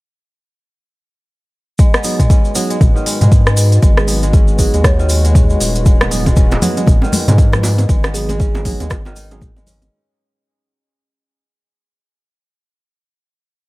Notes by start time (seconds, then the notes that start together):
1.79 G#3 F#4 B4, kick, closed hi-hat, cabasa
1.94 B3, cross-stick, cabasa
2.04 F#3 B3 D#4 G#4, open hi-hat, cabasa
2.20 G#3, kick, closed hi-hat, mid tom, cabasa
2.30 C#4, kick, closed hi-hat, cabasa
2.45 cabasa
2.55 F#3 B3 D#4 G#4, open hi-hat, cabasa
2.70 G#3, closed hi-hat, cabasa
2.81 G#1, kick, closed hi-hat, mid tom, cabasa
2.96 D#3, cabasa
3.06 G#3, open hi-hat, cabasa
3.21 G#2 G#3, closed hi-hat, mid tom, cabasa
3.32 kick, closed hi-hat, cabasa
3.47 G#3 B4, cross-stick, cabasa
3.57 G#4, open hi-hat, cabasa
3.72 closed hi-hat, cabasa
3.82 G#1 G#3, kick, closed hi-hat, cabasa
3.97 B3 G#4, cross-stick, cabasa
4.08 F#3 B3 D#4 G#4, open hi-hat, cabasa
4.23 G#3, closed hi-hat, cabasa
4.33 C#4, kick, closed hi-hat, cabasa
4.48 cabasa
4.59 F#3 B3 D#4 G#4, kick, open hi-hat, cabasa
4.74 D#2 G#3, closed hi-hat, cabasa
4.84 C#5, kick, cross-stick, closed hi-hat, cabasa
4.99 D#3 C#5, cabasa
5.09 G#3, open hi-hat, cabasa
5.25 G#3, closed hi-hat, cabasa
5.35 kick, closed hi-hat, mid tom, cabasa
5.50 G#3, cabasa
5.60 D#1 G#4, open hi-hat, cabasa
5.75 closed hi-hat, cabasa
5.86 G#3, kick, closed hi-hat, cabasa
6.01 B3, cross-stick, low bongo, muted conga, cabasa
6.11 F#3 B3 D#4 G#4, open hi-hat, cabasa
6.26 G#3, kick, closed hi-hat, mid tom, low bongo, muted conga, cabasa
6.36 C#4, kick, closed hi-hat, cabasa
6.51 high bongo, low bongo, muted conga, cabasa
6.62 F#3 B3 D#4 G#4, open hi-hat, high conga, low conga, cabasa
6.77 G#3, closed hi-hat, low bongo, cabasa
6.87 G#1, kick, closed hi-hat, mid tom, muted conga, high conga, cabasa
7.02 D#3, low bongo, cabasa
7.13 G#3, open hi-hat, muted conga, high conga, low conga, cabasa
7.28 G#2 G#3, closed hi-hat, mid tom, low bongo, cabasa
7.38 kick, closed hi-hat, muted conga, cabasa
7.53 G#3 B4, cross-stick, low bongo, low conga, cabasa
7.63 G#4, open hi-hat, high bongo, high conga, cabasa
7.78 closed hi-hat, low bongo, muted conga, cabasa
7.89 G#1 G#3, kick, closed hi-hat, cabasa
8.03 B3, cross-stick, low bongo, muted conga, cabasa
8.14 F#3 B3 D#4 G#4, open hi-hat, cabasa
8.29 G#3 G#4, closed hi-hat, low bongo, muted conga, high conga, low conga, cabasa
8.40 C#4, kick, closed hi-hat, cabasa
8.55 high bongo, low bongo, muted conga, cabasa
8.65 F#3 B3 D#4 G#4, kick, open hi-hat, high conga, low conga, cabasa
8.80 D#2 G#3, closed hi-hat, low bongo, cabasa
8.90 G#1, kick, cross-stick, closed hi-hat, high bongo, muted conga, cabasa
9.05 D#3, high bongo, low bongo, cabasa
9.16 D#4, open hi-hat, muted conga, cabasa
9.31 F#3 G#3 B3 D#4 G#4, closed hi-hat, low bongo, cabasa
9.41 kick, closed hi-hat, mid tom, muted conga, high conga, cabasa
9.57 G#3, low bongo, cabasa
9.67 C#4, open hi-hat, low conga, cabasa
9.82 closed hi-hat, low bongo, muted conga, high conga, cabasa